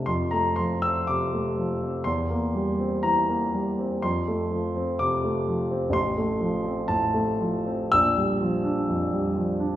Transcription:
<<
  \new Staff \with { instrumentName = "Grand piano" } { \time 2/4 \key f \major \tempo 4 = 62 c'''16 bes''16 c'''16 e'''16 d'''4 | c'''4 bes''4 | c'''4 d'''4 | c'''4 a''4 |
e'''2 | }
  \new Staff \with { instrumentName = "Grand piano" } { \clef bass \time 2/4 \key f \major f,16 a16 f16 c'16 c16 a16 f16 c'16 | e,16 bes16 g16 c'16 e16 bes16 g16 c'16 | f,16 a16 f16 c'16 c16 a16 f16 c'16 | a,,16 a16 f16 c'16 a,16 a16 f16 c'16 |
bes,,16 g16 f16 d'16 f,16 g16 f16 d'16 | }
>>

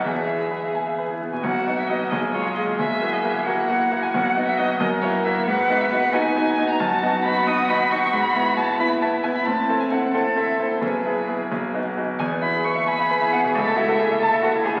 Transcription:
<<
  \new Staff \with { instrumentName = "Violin" } { \time 6/8 \key e \major \tempo 4. = 89 e''4. r4 r16 gis''16 | \key b \major fis''8. e''16 dis''8 dis''8 cis''8 dis''8 | e''8. dis''16 e''8 fis''4~ fis''16 gis''16 | fis''8. e''16 dis''8 dis''8 cis''8 e''8 |
fis''8. e''16 fis''8 gis''4~ gis''16 ais''16 | \key e \major a''4 b''8 dis'''8 b''8 cis'''8 | b''4 a''8 b''8 a''8 gis''16 b''16 | a''8. gis''16 fis''8 fis''8 e''8 c''8 |
b'4. r4. | gis''8 b''8 cis'''8 b''4 fis''8 | e''2~ e''8 r8 | }
  \new Staff \with { instrumentName = "Cello" } { \time 6/8 \key e \major gis'2~ gis'16 r8. | \key b \major fis'4. gis'4. | gis'4. fis'4. | fis'4. ais'4. |
b'4. dis'4. | \key e \major fis'2.~ | fis'4. e'4. | c'4. a'4. |
gis'2~ gis'16 r8. | r4. gis'4. | a'8 fis'8 gis'8 a'8 fis'8 gis'8 | }
  \new Staff \with { instrumentName = "Grand piano" } { \time 6/8 \key e \major e,16 b16 e'16 gis'16 b'16 e''16 gis''16 e''16 b'16 e'16 b16 b,16 | \key b \major b,,8 <b dis' fis'>8 <b dis' fis'>8 b,,8 <gis eis' gis'>8 <gis eis' gis'>8 | b,,8 <ais e' fis'>8 <ais e' fis'>8 <ais e' fis'>8 <ais e' fis'>8 <ais e' fis'>8 | b,,8 <b dis' fis'>8 <b dis' fis'>8 fis,8 <ais e' fis'>8 <ais e' fis'>8 |
gis,8 <b dis' fis'>8 <b dis' fis'>8 <b dis' fis'>8 <b dis' fis'>8 <b dis' fis'>8 | \key e \major fis,8 <b dis' fis'>8 <b dis' fis'>8 <b dis' fis'>8 <b dis' fis'>8 <b dis' fis'>8 | gis,8 <b e'>8 <b e'>8 <b e'>8 <b e'>8 <b e'>8 | a,8 <c' e' a'>8 <c' e' a'>8 <c' e' a'>8 <c' e' a'>8 <c' e' a'>8 |
b,,8 <b e' gis'>8 <b e' gis'>8 b,,8 <b dis' fis'>8 <b dis' fis'>8 | e,16 b16 e'16 gis'16 b'16 e''16 gis''16 e''16 b'16 e'16 b16 b,16 | cis,16 a16 e'16 a'16 e'16 e''16 a''16 e''16 a'16 e'16 a16 cis16 | }
>>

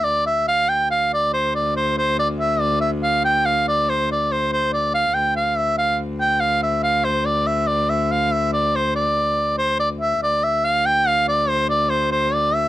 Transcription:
<<
  \new Staff \with { instrumentName = "Shawm" } { \time 6/8 \key d \minor \tempo 4. = 94 d''8 e''8 f''8 g''8 f''8 d''8 | c''8 d''8 c''8 c''8 d''8 e''8 | d''8 e''8 f''8 g''8 f''8 d''8 | c''8 d''8 c''8 c''8 d''8 f''8 |
g''8 f''8 e''8 f''8 r8 g''8 | f''8 e''8 f''8 c''8 d''8 e''8 | d''8 e''8 f''8 e''8 d''8 c''8 | d''4. c''8 d''8 e''8 |
d''8 e''8 f''8 g''8 f''8 d''8 | c''8 d''8 c''8 c''8 d''8 e''8 | }
  \new Staff \with { instrumentName = "Viola da gamba" } { \clef bass \time 6/8 \key d \minor d,2.~ | d,2.~ | d,2.~ | d,2. |
d,2.~ | d,2.~ | d,2.~ | d,2. |
d,2.~ | d,2. | }
>>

